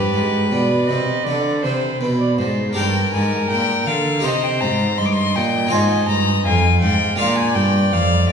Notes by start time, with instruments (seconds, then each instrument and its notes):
Already playing: cello G2, harpsichord D4 G4, violin G4 B4
0.12 cello G#2, harpsichord G#2
0.50 cello B2, harpsichord B2, violin D5
0.88 cello C3, harpsichord C3, violin D#5
1.24 cello D3, harpsichord D3, violin D5
1.62 cello C3, harpsichord C3, violin C5
2.00 cello B2, harpsichord B2, violin B4
2.19 violin D5
2.38 cello G#2, harpsichord G#2, violin C5
2.73 cello G2, harpsichord D4 G4 A#4, violin A#4 G5
2.78 harpsichord G2
3.13 cello G#2, harpsichord G#2, violin G#5
3.50 cello A#2, harpsichord A#2, violin G5
3.86 harpsichord D3, cello D3, violin F5
4.19 harpsichord C3 D#4 G4 C5
4.24 cello C3, violin C5 D#5
4.43 violin G5
4.61 harpsichord G#2, cello G#2, violin A#5
4.97 harpsichord G2, cello G2, violin D#5 C6
5.06 violin D6
5.12 violin C6
5.35 harpsichord A#2, cello A#2, violin G5
5.67 harpsichord D#4 F4 C5
5.71 harpsichord G#2, cello G#2, violin D#5 G#5
6.08 cello G2, harpsichord G2, violin A#5
6.45 cello F2, harpsichord F2, violin F5 G#5
6.81 cello G#2, harpsichord G#2, violin G5
7.16 cello A#2, harpsichord D4 F4 A#4, violin D5 F5
7.20 harpsichord A#2
7.38 violin G#5
7.55 cello G2, harpsichord G2, violin G5
7.92 cello F2, harpsichord F2, violin F5
8.29 cello G#2